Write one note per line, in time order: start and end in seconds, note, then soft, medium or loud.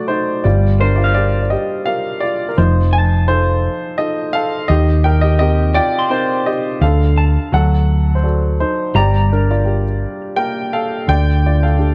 0.00 0.41 F#3 medium
0.00 0.47 A3 medium
0.00 0.11 F#4 medium
0.00 0.44 D5 medium
0.08 0.42 D#4 medium
0.08 0.44 F#4 soft
0.08 0.45 C5 medium
0.44 1.55 G1 medium
0.44 2.53 G3 medium
0.44 0.78 F4 medium
0.44 0.81 D5 medium
0.80 0.98 D4 soft
0.80 0.98 A#4 medium
0.80 2.06 C5 soft
0.96 1.14 F4 medium
0.96 1.13 D5 medium
1.04 2.26 F5 soft
1.14 1.85 F4 soft
1.14 1.51 G4 soft
1.14 1.85 A#4 soft
1.14 1.41 D5 medium
1.42 1.50 D5 medium
1.50 1.85 G4 medium
1.50 1.87 D#5 medium
1.86 2.22 F4 soft
1.86 2.55 G4 soft
1.86 2.47 A#4 soft
1.86 2.23 F5 medium
2.20 2.49 F4 medium
2.20 2.51 D5 medium
2.49 2.57 A#4 medium
2.58 3.67 F1 medium
2.58 4.66 F3 medium
2.58 3.25 D#4 medium
2.58 3.26 C5 medium
2.93 4.18 A5 medium
3.28 3.96 D#4 soft
3.28 3.96 F4 soft
3.28 3.97 A4 soft
3.28 3.95 C5 medium
3.98 4.67 D#4 soft
3.98 4.67 F4 soft
3.98 4.33 A4 soft
3.98 4.35 D#5 medium
4.33 4.67 A4 medium
4.33 4.70 F5 medium
4.68 5.79 D#2 loud
4.68 6.78 D#3 medium
4.68 5.03 G4 medium
4.68 5.05 D#5 medium
5.04 5.22 A#4 medium
5.04 5.23 G5 medium
5.21 5.39 G4 medium
5.21 5.38 D#5 medium
5.39 6.09 C4 soft
5.39 6.09 D#4 soft
5.39 5.73 G4 medium
5.39 6.09 A#4 medium
5.39 5.76 D#5 medium
5.74 6.09 F4 medium
5.74 6.11 D5 medium
5.74 7.01 G5 medium
5.99 7.17 C6 soft
6.10 6.79 C4 soft
6.10 6.79 D#4 soft
6.10 6.80 A#4 soft
6.10 6.47 C5 medium
6.46 6.80 G4 medium
6.46 6.83 D#5 medium
6.81 7.36 D2 medium
6.81 7.50 D3 medium
6.81 7.49 A4 medium
6.81 7.55 F5 medium
7.18 7.84 A5 soft
7.52 8.63 D2 medium
7.52 8.90 F#3 medium
7.52 8.13 A4 medium
7.52 8.19 F#5 medium
8.15 8.23 C5 medium
8.23 8.92 F#4 soft
8.23 8.93 A4 soft
8.23 8.92 D5 soft
8.60 8.93 D#4 soft
8.60 8.96 C5 medium
8.94 10.05 G1 medium
8.94 11.04 G3 medium
8.94 9.29 G4 medium
8.94 9.29 D5 medium
8.94 10.21 A#5 medium
9.32 9.48 D4 soft
9.32 9.50 A#4 medium
9.51 9.82 F4 soft
9.51 9.83 D5 medium
9.65 10.34 G4 soft
9.65 10.35 A#4 soft
10.36 11.05 A#3 soft
10.36 11.05 G4 soft
10.36 10.71 A#4 medium
10.36 10.73 G5 medium
10.73 11.06 A4 medium
10.73 11.09 F5 medium
11.07 11.95 D2 medium
11.07 11.95 D3 medium
11.07 11.42 D5 medium
11.07 11.45 G5 medium
11.46 11.61 F4 soft
11.46 11.63 D5 medium
11.63 11.78 A4 medium
11.63 11.95 F5 medium
11.78 11.95 D4 soft
11.78 11.95 G4 soft
11.78 11.95 A4 soft